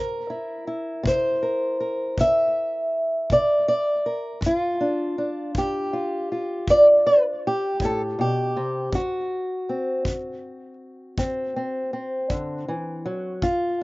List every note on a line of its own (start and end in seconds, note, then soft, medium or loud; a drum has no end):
0.00 0.60 C3 medium
0.00 1.41 A#4 loud
0.30 0.66 E4 soft
0.67 4.39 E4 soft
1.03 1.72 C3 medium
1.03 2.19 C5 medium
1.03 kick medium
1.43 1.79 A#4 soft
1.80 4.05 A#4 soft
2.18 2.86 C3 medium
2.18 3.32 E5 loud
2.18 kick medium
3.30 3.99 C3 medium
3.30 3.67 D5 loud
3.30 kick medium
3.68 4.43 D5 loud
4.06 4.39 A#4 soft
4.41 5.10 G2 medium
4.41 kick medium
4.46 5.92 F4 medium
4.81 5.18 D4 soft
5.18 8.89 D4 soft
5.55 6.23 G2 medium
5.55 6.70 G4 medium
5.55 kick medium
5.93 6.31 F4 soft
6.32 7.81 F4 soft
6.68 7.37 G2 medium
6.68 6.86 D5 loud
6.68 kick medium
7.07 7.23 B4 medium
7.47 8.20 G4 medium
7.80 8.18 A2 medium
7.80 kick medium
7.85 8.01 A4 medium
8.19 8.56 B2 medium
8.19 8.95 G4 medium
8.56 8.92 C3 medium
8.92 9.60 D3 medium
8.92 13.43 F#4 medium
8.92 kick medium
9.69 11.17 C4 soft
10.05 10.73 D3 medium
10.05 kick medium
11.18 11.86 D3 medium
11.18 11.55 C4 soft
11.18 kick medium
11.56 11.92 C4 soft
11.93 13.38 C4 soft
12.30 12.68 D3 medium
12.30 kick medium
12.68 13.06 E3 medium
13.06 13.43 F#3 medium
13.42 13.83 G2 medium
13.42 13.83 F4 medium
13.42 kick medium